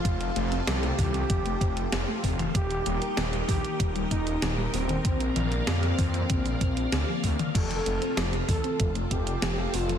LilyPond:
<<
  \new Staff \with { instrumentName = "Soft synth lead" } { \time 4/4 \key f \mixolydian \tempo 4 = 96 f'4 g'2. | g'4. g'8 r8 ees'8 r8 c'8~ | c'4 c'2. | a'4. a'8 r8 g'4 f'8 | }
  \new Staff \with { instrumentName = "String machine" } { \time 4/4 \key f \mixolydian <c' f' a'>1 | <ees' g' bes'>1 | <bes d'' f''>1 | <c' f' a'>1 | }
  \new Staff \with { instrumentName = "Synth arpeggio sound" } { \clef bass \time 4/4 \key f \mixolydian f16 r16 a16 c'16 f16 a16 r16 c'16 f16 a16 c'16 r16 f16 a16 c'16 f16 | ees16 r16 g16 bes16 ees16 g16 r16 bes16 ees16 g16 bes16 r16 ees16 g16 bes16 ees16 | d16 r16 f16 bes16 d16 f16 r16 bes16 d16 f16 bes16 r16 d16 f16 bes16 d16 | f16 r16 a16 c'16 f16 a16 r16 c'16 f16 a16 c'16 r16 f16 a16 c'16 f16 | }
  \new Staff \with { instrumentName = "Detuned saw bass" } { \clef bass \time 4/4 \key f \mixolydian f,,8 f,,8 c,8 c,8 f,,8 f,,8 f,,8 f,,8 | ees,,8 ees,,8 ees,,8 bes,,8 ees,,8 ees,,8 ees,,8 ees,,8 | bes,,8 bes,,8 f,8 f,8 bes,,8 bes,,8 d,8 d,8 | f,,8 f,,8 f,,8 c,8 f,,8 f,,8 f,,8 f,,8 | }
  \new DrumStaff \with { instrumentName = "Drums" } \drummode { \time 4/4 <hh bd>16 hh16 hh16 hh16 <hh sn>16 hh16 <hho bd toml>16 hh16 <hh bd>16 hh16 <hh bd>16 hh16 <hh sn>8 <hho bd>16 <hh toml>16 | <hh bd>16 hh16 hh16 hh16 <hh sn>16 hh16 <hho bd toml>16 hh16 <hh bd>16 hh16 <hh bd>16 hh16 <hh sn>8 hho16 hh16 | <hh bd>16 hh16 <hh toml>16 hh16 <hh sn>16 hh16 <hho bd toml>16 hh16 <hh bd>16 hh16 <hh bd>16 hh16 <hh sn>8 <hho bd>16 <hh toml>16 | <cymc hh bd>16 hh16 hh16 hh16 <hh sn>16 hh16 <hho bd toml>16 hh16 <hh bd>16 hh16 <hh bd>16 hh16 <hh sn>8 hho16 hh16 | }
>>